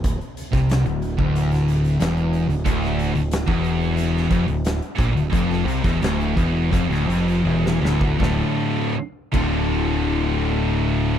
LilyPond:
<<
  \new Staff \with { instrumentName = "Distorted electric guitar" } { \clef bass \time 4/4 \key d \minor \tempo 4 = 88 r1 | d,8. d,8 e,4~ e,16 f,16 d,8 r16 bes,16 d,16 | f,8 c16 e,16 d,8 e,8 f,16 d,16 f,8 e,8 d,8 | <d, a, d a f'>16 r4 r16 <d, a, d a f'>2~ <d, a, d a f'>8 | }
  \new Staff \with { instrumentName = "Distorted electric guitar" } { \clef bass \time 4/4 \key d \minor d,16 r8 c8 d,8 d,4~ d,16 e,8. d,16 | d,8. d,8 e,4~ e,16 f,16 d,8 r16 bes,16 d,16 | f,8 c16 e,16 d,8 e,8 f,16 d,16 f,8 e,8 d,8 | <d, a, d>16 r4 r16 <d, a, d>2~ <d, a, d>8 | }
  \new Staff \with { instrumentName = "Distorted electric guitar" } { \clef bass \time 4/4 \key d \minor d,16 r8 c8 d,8 d,4~ d,16 e,8. d,16 | d,8. d,8 e,4~ e,16 f,16 d,8 r16 bes,16 d,16 | f,8 c16 e,16 d,8 e,8 f,16 d,16 f,8 e,8 d,8 | <d, a, d>16 r4 r16 <d, a, d>2~ <d, a, d>8 | }
  \new Staff \with { instrumentName = "Picked electric bass" } { \clef bass \time 4/4 \key d \minor d,,16 r8 c,8 d,,8 d,,4~ d,,16 e,,8. d,,16 | d,,8. d,,8 e,,4~ e,,16 f,,16 d,,8 r16 bes,,16 d,,16 | f,,8 c,16 e,,16 d,,8 e,,8 f,,16 d,,16 f,,8 e,,8 d,,8 | d,,16 r4 r16 d,,2~ d,,8 | }
  \new DrumStaff \with { instrumentName = "Drums" } \drummode { \time 4/4 <hh bd>16 hh16 hh16 <hh bd sn>16 <hh sn>16 hh16 hh16 bd16 hh16 <hh sn>16 hh16 hh16 <hh sn>16 hh16 hh16 hh16 | <hh bd>16 <hh sn>16 hh16 hh16 <hh sn>16 bd16 hh16 hh16 hh16 sn16 <hh bd>16 hh16 <hh sn>16 hh16 <hh bd>16 hh16 | <hh bd>16 <hh sn>16 hh16 <hh bd sn>16 <hh sn>16 hh16 <hh bd>8 <hh bd>16 <hh sn>16 hh16 hh16 tommh16 sn16 sn16 bd16 | <bd sn>4 r8 <cymc bd>8 r4 r4 | }
>>